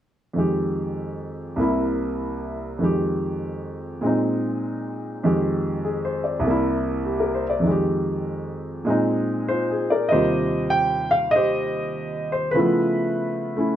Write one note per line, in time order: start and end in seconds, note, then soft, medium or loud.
0.33 1.57 F2 soft
0.33 1.58 D#3 soft
0.33 1.59 G#3 soft
0.39 1.60 G4 soft
1.56 2.79 C2 soft
1.56 2.80 C3 soft
1.56 2.81 A#3 soft
1.61 2.82 E4 medium
2.79 4.01 F2 soft
2.79 4.02 D#3 soft
2.79 4.01 G#3 soft
2.84 4.04 G4 soft
4.01 5.23 A#2 soft
4.01 5.23 G#3 soft
4.01 5.24 C4 soft
4.07 5.25 D#4 soft
5.24 6.44 F2 soft
5.24 6.44 D#3 soft
5.24 6.44 G#3 soft
5.24 6.45 G4 soft
5.84 6.23 G#4 soft
6.05 6.36 C5 soft
6.24 6.55 D5 soft
6.39 7.63 C2 medium
6.39 7.65 C3 soft
6.47 7.66 A#3 soft
6.47 7.68 E4 medium
7.06 7.34 G4 soft
7.20 7.46 A#4 soft
7.35 7.53 C5 soft
7.50 7.71 D5 soft
7.60 8.85 F2 soft
7.60 8.86 D#3 soft
7.67 8.85 G#3 soft
7.67 8.90 G4 soft
8.85 10.10 A#2 soft
8.85 10.11 G#3 soft
8.85 10.12 C4 soft
8.90 10.13 D#4 medium
9.48 9.90 F4 soft
9.48 9.89 C5 medium
9.71 10.03 G#4 soft
9.90 10.24 A#4 soft
9.90 10.11 D5 medium
10.09 12.56 D#2 soft
10.09 12.56 C3 soft
10.09 11.31 G4 medium
10.09 11.31 C5 medium
10.09 10.68 D#5 medium
10.13 12.57 G3 soft
10.13 12.54 F4 soft
10.70 11.15 G5 medium
11.11 11.33 F5 medium
11.31 12.32 D#5 medium
11.36 12.53 G4 medium
11.36 12.31 C5 soft
12.32 12.54 C5 medium
12.51 13.76 C#3 soft
12.51 13.73 F4 soft
12.51 13.71 B4 medium
12.56 13.76 F3 soft
12.56 13.55 A3 soft
12.56 13.76 B3 soft
12.56 13.58 E4 soft
12.56 13.76 E5 soft
13.57 13.76 A3 soft
13.57 13.76 C#4 soft
13.57 13.76 E4 soft